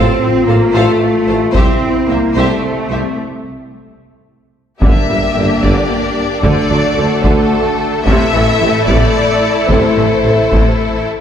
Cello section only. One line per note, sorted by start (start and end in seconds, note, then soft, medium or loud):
0.00 0.48 C4 medium
0.47 0.74 A#3 medium
0.75 1.56 A3 medium
1.55 2.08 C4 medium
2.09 2.36 A#3 medium
2.36 3.18 A3 medium
4.82 4.90 G2 medium
5.09 5.17 G2 soft
5.37 5.45 G2 soft
5.63 5.71 G2 medium
6.44 6.52 D3 medium
6.70 6.78 D3 soft
6.97 7.05 D3 soft
7.24 7.32 D3 medium
8.06 8.14 A2 medium
8.33 8.41 A2 medium
8.61 8.69 A2 medium
8.88 8.96 A2 medium
9.69 9.77 A2 medium
9.96 10.04 A2 soft
10.24 10.32 A2 soft
10.51 10.59 A2 medium